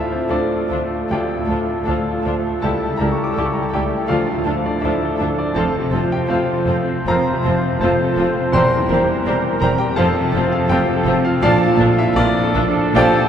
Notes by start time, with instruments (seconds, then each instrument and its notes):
Already playing: grand piano D2 A2 E4 F4 D5 E5 F5, french horn section A3 F4, trumpet section A4
0.06 grand piano F4
0.12 grand piano C4 C5
0.28 cello section D2, double bass section D2, bassoon F3, viola section D4, grand piano D4 A4 D5, violin section F4 A4, clarinet A4, flute section A5
0.55 grand piano F4
0.68 cello section D2, double bass section D2, bassoon F3, violin section F4 A4, flute section A5
0.72 viola section D4, clarinet A4
0.82 grand piano A3
1.08 cello section D2, grand piano D2 G4 G5, double bass section D2, bassoon F3, violin section F4 A4, flute section A5
1.12 viola section D4, clarinet A4, grand piano D5
1.36 grand piano A2
1.46 cello section D2, double bass section D2, violin section A4, clarinet A4, flute section A5
1.50 bassoon F3, viola section D4, violin section F4
1.61 grand piano F4
1.85 cello section D2, double bass section D2, bassoon F3, viola section D4, clarinet A4, violin section A4, grand piano A4 D5 F5, flute section A5
1.89 grand piano F4, violin section F4
2.13 grand piano F4
2.22 double bass section D2, cello section D2, bassoon F3, violin section A4
2.26 viola section D4, violin section F4, clarinet A4, flute section A5
2.39 grand piano A3
2.60 double bass section C#2, grand piano C#2 A4 E5 A5, cello section C#2, french horn section G3 E4, bassoon G3, viola section E4, violin section G4 A4, clarinet A4
2.64 flute section A5
2.89 grand piano C#3
2.96 double bass section C#2, cello section C#2, bassoon G3, violin section G4 A4, grand piano A#4 A#5, flute section A5
3.00 viola section E4, clarinet A4
3.12 grand piano G4 C#6
3.24 grand piano D6
3.32 violin section A4, grand piano E6
3.37 double bass section C#2, cello section C#2, bassoon G3, viola section E4, violin section G4, grand piano A4 D6, clarinet A4, flute section A5
3.46 grand piano C#6
3.53 grand piano A#5
3.61 grand piano G4 A5
3.70 viola section E4, violin section A4, grand piano G5
3.74 double bass section C#2, cello section C#2, bassoon G3, grand piano G4, violin section G4, clarinet A4, flute section A5
3.86 grand piano A3
4.06 grand piano D2 F4 D5 F5, timpani D3, french horn section D4, violin section A4
4.11 double bass section D2, cello section D2, french horn section F3, bassoon F3, viola section D4, violin section F4, clarinet A4, flute section A5
4.34 grand piano A2
4.44 cello section D2, double bass section D2, viola section D4, violin section F4 A4, flute section A5
4.49 bassoon F3, clarinet A4
4.58 grand piano F4
4.66 grand piano D4 D5
4.80 double bass section D2, cello section D2, grand piano E4 D5 E5, violin section A4
4.84 bassoon F3, viola section D4, violin section F4, clarinet A4, flute section A5
5.05 grand piano A4
5.16 double bass section D2, cello section D2, viola section D4, violin section A4, flute section A5
5.21 bassoon F3, violin section F4, clarinet A4
5.30 grand piano D4
5.39 grand piano D4 D5
5.54 double bass section F1, grand piano F2 A4 F5 A5, cello section F2, bassoon F3, french horn section C4, viola section C4, violin section F4 A4, trumpet section C5, flute section A5
5.59 clarinet C5
5.79 grand piano C3
5.91 double bass section F1, cello section F2, bassoon F3, viola section C4, violin section A4
5.95 violin section F4, clarinet C5, flute section A5
6.03 grand piano F4
6.12 grand piano G4 G5
6.26 double bass section F1, bassoon F3, viola section C4, violin section A4, grand piano C5 F5, flute section A5
6.31 cello section F2, grand piano F4 C5, violin section F4, clarinet C5
6.54 grand piano A4
6.67 double bass section F1, cello section F2, bassoon F3, viola section C4, violin section F4 A4, clarinet C5, flute section A5
6.81 grand piano C4
7.06 double bass section F1, grand piano F2 A#4 F5 A#5, cello section F2, bassoon F3, viola section C4, violin section F4 A4, flute section A5
7.11 clarinet C5
7.32 grand piano C3
7.43 double bass section F1, bassoon F3, viola section C4, violin section F4 A4
7.47 cello section F2, clarinet C5, flute section A5
7.58 grand piano F4
7.81 double bass section F1, cello section F2, bassoon F3, viola section C4, violin section F4 A4, grand piano A4 C5 F5 A5, flute section A5
7.85 clarinet C5
8.04 grand piano A4
8.16 double bass section F1, cello section F2, bassoon F3, viola section C4, violin section F4 A4, flute section A5
8.21 clarinet C5
8.28 grand piano C4
8.52 double bass section E1, grand piano E2 C5 G5 C6, cello section E2, bassoon G3, french horn section G3, viola section C4, violin section A#4, trumpet section A#4
8.57 violin section G4, clarinet C5, flute section A#5
8.78 grand piano E3
8.88 double bass section E1, cello section E2, bassoon G3, viola section C4, violin section A#4
8.92 violin section G4, clarinet C5, flute section A#5
9.02 grand piano G4
9.26 double bass section E1, cello section E2, bassoon G3, viola section C4, violin section G4 A#4, clarinet C5, grand piano C5, flute section A#5
9.50 grand piano A#4
9.60 double bass section E1, cello section E2, bassoon G3, viola section C4, violin section G4 A#4, grand piano A#4 A#5, clarinet C5
9.64 flute section A#5
9.72 grand piano C4
9.78 grand piano G4 G5
9.96 double bass section F1, cello section F2, grand piano F2 A4 F5 A5, french horn section F3, bassoon F3, viola section C4, violin section F4 A4, trumpet section A4, clarinet C5
10.01 flute section A5
10.23 grand piano C3
10.31 double bass section F1, cello section F2, violin section A4
10.35 bassoon F3, viola section C4, violin section F4, clarinet C5, flute section A5
10.48 grand piano F4
10.52 grand piano F4 F5
10.68 double bass section F1, cello section F2, bassoon F3, viola section C4, violin section F4 A4, grand piano G4 C5 G5
10.73 clarinet C5, flute section A5
10.96 grand piano A4
11.04 double bass section F1, cello section F2, bassoon F3, violin section F4 A4
11.08 viola section C4, clarinet C5, flute section A5
11.19 grand piano C4
11.25 grand piano F4 F5
11.41 double bass section A#1, cello section A#2, grand piano A#2 F4 D5 F5, french horn section F3 D4, bassoon F3, viola section D4, violin section F4 A4, trumpet section A4, clarinet D5
11.45 flute section A5
11.67 grand piano F3
11.76 double bass section A#1, cello section A#2, viola section D4, violin section A4
11.81 violin section F4
11.92 grand piano F4
11.98 grand piano E4 E5
12.13 double bass section A#1, cello section A#2, viola section D4, violin section F4 A4, trumpet section A4, grand piano D5
12.17 french horn section F3 D4, grand piano D4 A#4
12.43 grand piano A4
12.55 double bass section A#1, cello section A#2, viola section D4, violin section F4 A4
12.68 grand piano D4
12.94 double bass section A#1, cello section A#2, grand piano A#2 G4 G5, bassoon F3, viola section D4, violin section F4 A4, clarinet D5, flute section A5
12.98 grand piano D5
13.20 grand piano F3